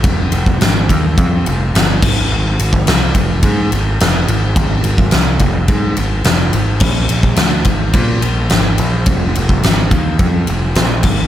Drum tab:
CC |--------------x-|----------------|----------------|x---------------|
RD |x-x-x-x-x-x-x---|--x-x-x-x-x-x-x-|x-x-x-x-x-x-x-x-|--x-x-x-x-x-x-x-|
SD |----o-------o---|----o-------o---|----o-------o---|----o-------o---|
BD |o--o--o-o-----o-|---o--o-o-------|o--o--o-o-------|o--o--o-o-------|

CC |--------------x-|
RD |x-x-x-x-x-x-x---|
SD |----o-------o---|
BD |o--o--o-o-----o-|